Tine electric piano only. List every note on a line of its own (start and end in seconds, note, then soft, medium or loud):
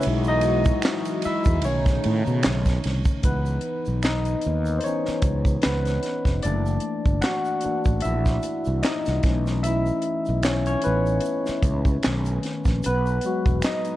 0.00 0.24 E4 medium
0.00 0.29 E5 loud
0.07 1.21 F#3 medium
0.07 1.21 G#3 medium
0.07 0.28 D#4 medium
0.28 1.21 D#4 medium
0.28 1.21 D#5 loud
1.25 1.62 E4 medium
1.25 1.66 E5 medium
1.64 2.80 D#3 medium
1.64 2.80 A3 soft
1.64 2.81 C#4 medium
1.64 2.80 C#5 medium
3.25 4.41 E3 soft
3.25 4.01 B3 medium
3.25 4.05 D#4 medium
3.25 4.07 B4 medium
4.04 4.74 D#4 medium
4.04 4.79 D#5 medium
4.79 4.84 C5 medium
4.84 5.20 E3 soft
4.84 5.21 B3 soft
4.84 5.61 C#4 medium
4.84 5.21 D#4 soft
4.84 5.66 C#5 medium
5.63 6.23 B3 medium
5.63 6.21 B4 medium
6.43 7.63 E3 soft
6.43 9.21 A3 medium
6.43 7.63 A#3 soft
6.43 7.20 D4 medium
6.43 7.19 D5 medium
7.22 8.00 F#4 medium
7.22 8.05 F#5 medium
7.64 8.00 E3 soft
7.64 8.00 A#3 soft
7.64 8.00 D4 soft
8.02 8.80 E4 medium
8.02 8.85 E5 medium
8.83 9.43 D#4 medium
8.83 9.41 D#5 medium
9.24 10.40 E3 medium
9.24 10.40 A3 soft
9.24 10.41 C#4 medium
9.63 10.41 E4 medium
9.63 10.46 E5 medium
10.44 10.66 C#4 medium
10.44 10.65 C#5 medium
10.67 10.84 C#4 medium
10.67 10.84 C#5 medium
10.84 12.41 B3 medium
10.84 12.40 B4 medium
12.05 12.80 D#3 medium
12.05 12.81 A3 medium
12.05 12.81 C#4 medium
12.86 13.61 B3 medium
12.86 13.67 B4 medium
13.24 13.96 F#3 medium
13.24 13.96 G#3 soft
13.24 13.96 F#4 medium
13.65 13.96 D#4 medium
13.65 13.96 D#5 loud